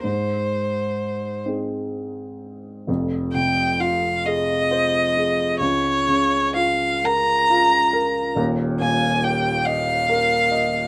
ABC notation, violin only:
X:1
M:6/8
L:1/8
Q:3/8=44
K:Fm
V:1 name="Violin"
c3 z3 | z g f e3 | d2 f b3 | z a g f3 |]